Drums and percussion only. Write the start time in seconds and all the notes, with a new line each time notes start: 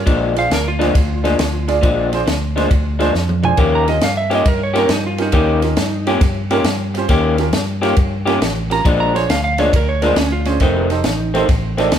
0.07 kick, ride
0.36 snare, ride
0.51 snare, ride
0.81 snare, ride
0.95 kick, snare, ride
1.25 snare, ride
1.39 snare, ride
1.68 snare, ride
1.83 kick, ride
2.13 snare, ride
2.27 snare, ride
2.58 snare, ride
2.71 kick, ride
3.00 snare, ride
3.15 snare
3.29 mid tom
3.44 floor tom
3.57 kick, ride
3.88 snare, ride
4.01 snare, ride
4.31 snare, ride
4.46 kick, ride
4.76 snare, ride
4.89 snare, ride
5.18 snare, ride
5.32 kick, ride
5.62 snare, ride
5.77 snare, ride
6.07 snare, ride
6.21 kick, snare, ride
6.51 snare, ride
6.64 snare, ride
6.95 snare, ride
7.09 kick, snare, ride
7.38 snare, ride
7.53 snare, ride
7.83 snare, ride
7.96 kick, ride
8.27 snare, ride
8.42 snare, ride
8.71 snare, ride
8.85 kick, ride
9.16 snare, ride
9.30 snare, ride
9.58 snare, ride
9.73 kick, ride
10.02 snare, ride
10.16 snare, ride
10.45 snare, ride
10.60 kick, snare, ride
10.90 snare, ride
11.04 snare, ride
11.35 snare, ride
11.49 kick, snare, ride
11.78 snare, ride
11.92 snare, ride